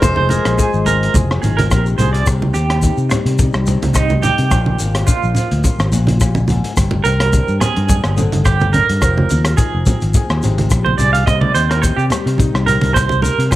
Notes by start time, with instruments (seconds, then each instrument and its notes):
Already playing: nylon-string guitar C4, clean electric guitar A#4
0.02 fingered electric bass F1, nylon-string guitar F3 G#4, trombone G#3, steel-string acoustic guitar C5, kick, cross-stick, closed hi-hat, shekere
0.16 clean electric guitar C5, high conga
0.29 nylon-string guitar G#4, clean electric guitar A#4, closed hi-hat, high conga, shekere
0.45 fingered electric bass A#1, cross-stick, closed hi-hat, shekere
0.58 clean electric guitar G#4, nylon-string guitar G#4, kick, closed hi-hat, shekere
0.73 fingered electric bass G#1, shekere
0.86 nylon-string guitar C4, clean electric guitar A#4, closed hi-hat, low conga, shekere
1.03 closed hi-hat
1.14 fingered electric bass F1, nylon-string guitar G#4, kick, closed hi-hat, high conga, low conga, shekere
1.31 cross-stick
1.42 fingered electric bass G#1, nylon-string guitar D#4, clean electric guitar G#4, closed hi-hat, low conga, shekere
1.57 clean electric guitar A#4, closed hi-hat, high conga
1.71 fingered electric bass A#1, nylon-string guitar C3, kick, cross-stick, closed hi-hat, shekere
1.86 shekere
1.98 fingered electric bass C2, nylon-string guitar G#4, clean electric guitar C5, closed hi-hat, low conga, shekere
2.13 clean electric guitar D5, closed hi-hat
2.26 fingered electric bass C2, nylon-string guitar C3, kick, cross-stick, closed hi-hat, shekere
2.42 high conga
2.54 fingered electric bass D#2, nylon-string guitar C4, clean electric guitar G4, closed hi-hat, shekere
2.70 cross-stick, closed hi-hat
2.82 nylon-string guitar D#4, kick, closed hi-hat, shekere
2.97 fingered electric bass C3, shekere
3.10 nylon-string guitar G3 C4, muted clean electric guitar stroke, cross-stick, closed hi-hat, low conga, shekere
3.26 fingered electric bass C3, closed hi-hat
3.38 nylon-string guitar D#4, kick, closed hi-hat, low conga, shekere
3.53 fingered electric bass C2, cross-stick, shekere
3.66 nylon-string guitar G2 C4, closed hi-hat, low conga, shekere
3.82 fingered electric bass C2, closed hi-hat, high conga
3.94 clean electric guitar D#4, kick, cross-stick, closed hi-hat, shekere
4.10 high conga, shekere
4.22 nylon-string guitar D#4, clean electric guitar G4, closed hi-hat, high conga, low conga, shekere
4.38 fingered electric bass C3, closed hi-hat
4.51 fingered electric bass A#1, nylon-string guitar A#2 F3 D4 F4, kick, cross-stick, closed hi-hat, shekere
4.66 high conga
4.79 fingered electric bass G#1, nylon-string guitar D4, closed hi-hat, shekere
4.95 cross-stick, closed hi-hat
5.07 nylon-string guitar D4, clean electric guitar F4, kick, closed hi-hat, shekere
5.23 fingered electric bass A#1, shekere
5.35 nylon-string guitar F3 D4, closed hi-hat, low conga, shekere
5.51 fingered electric bass D2, closed hi-hat
5.64 nylon-string guitar F4, kick, closed hi-hat, low conga, shekere
5.79 fingered electric bass G#1, cross-stick, shekere
5.92 fingered electric bass A#1, nylon-string guitar A#2 D4, closed hi-hat, low conga, shekere
6.07 closed hi-hat, high conga
6.20 nylon-string guitar A#2, kick, cross-stick, closed hi-hat, shekere
6.35 high conga, shekere
6.48 nylon-string guitar G#2, closed hi-hat, high conga, low conga, shekere
6.64 closed hi-hat
6.76 fingered electric bass G1, nylon-string guitar G2, kick, cross-stick, closed hi-hat, shekere
6.91 high conga
7.04 fingered electric bass C2, nylon-string guitar C4, clean electric guitar A#4, closed hi-hat, shekere
7.20 cross-stick, closed hi-hat
7.33 nylon-string guitar D4, kick, closed hi-hat, shekere
7.48 fingered electric bass G2, shekere
7.60 nylon-string guitar C4, clean electric guitar G#4, cross-stick, closed hi-hat, low conga, shekere
7.76 fingered electric bass G2, closed hi-hat
7.88 nylon-string guitar D4, kick, closed hi-hat, low conga, shekere
8.04 fingered electric bass G1, cross-stick, shekere
8.16 nylon-string guitar D3 C4, closed hi-hat, low conga, shekere
8.32 fingered electric bass G1, closed hi-hat, high conga
8.45 clean electric guitar G4, kick, cross-stick, closed hi-hat, shekere
8.60 high conga, shekere
8.73 nylon-string guitar D4, clean electric guitar A#4, closed hi-hat, high conga, low conga, shekere
8.89 fingered electric bass G2, closed hi-hat
9.01 fingered electric bass F1, nylon-string guitar F3, kick, cross-stick, closed hi-hat, shekere
9.18 high conga
9.30 fingered electric bass D#2, muted nylon-string guitar stroke, closed hi-hat, high conga, shekere
9.45 cross-stick, closed hi-hat, shekere
9.57 nylon-string guitar D#4, clean electric guitar G#4, kick, closed hi-hat, shekere
9.75 fingered electric bass F1
9.86 nylon-string guitar C4 D#4, kick, closed hi-hat, low conga, shekere
10.01 fingered electric bass G#1, closed hi-hat, shekere
10.14 nylon-string guitar G#4, kick, closed hi-hat, low conga, shekere
10.30 fingered electric bass D#2, cross-stick, shekere
10.42 fingered electric bass G#1, nylon-string guitar C3 D#4, closed hi-hat, low conga, shekere
10.58 closed hi-hat, high conga
10.70 fingered electric bass A#1, kick, cross-stick, closed hi-hat, shekere
10.85 clean electric guitar C5, high conga
10.98 fingered electric bass C2, nylon-string guitar G#4, clean electric guitar D5, closed hi-hat, low conga, shekere
11.13 clean electric guitar F5, closed hi-hat, shekere
11.26 fingered electric bass C2, nylon-string guitar C3, clean electric guitar D#5, kick, cross-stick, closed hi-hat, shekere
11.41 clean electric guitar D5, high conga
11.54 fingered electric bass D#2, nylon-string guitar C4, clean electric guitar C5, closed hi-hat, shekere
11.69 clean electric guitar A#4, cross-stick, closed hi-hat
11.82 nylon-string guitar G4, clean electric guitar C5, kick, closed hi-hat, shekere
11.96 fingered electric bass C3, clean electric guitar G4, shekere
12.10 nylon-string guitar G3 C4, cross-stick, closed hi-hat, low conga, shekere
12.26 fingered electric bass C3, closed hi-hat
12.38 nylon-string guitar D#4, kick, closed hi-hat, low conga, shekere
12.54 fingered electric bass C2, cross-stick, shekere
12.66 nylon-string guitar G2 C4, clean electric guitar A#4, closed hi-hat, low conga, shekere
12.81 fingered electric bass C2, closed hi-hat, high conga
12.94 clean electric guitar C5, kick, cross-stick, closed hi-hat, shekere
13.09 high conga, shekere
13.22 nylon-string guitar D#4, clean electric guitar A#4, closed hi-hat, high conga, low conga, shekere
13.39 fingered electric bass C3, closed hi-hat
13.51 fingered electric bass A#1, nylon-string guitar A#2 F3 D4, clean electric guitar G#4, kick, cross-stick, closed hi-hat, shekere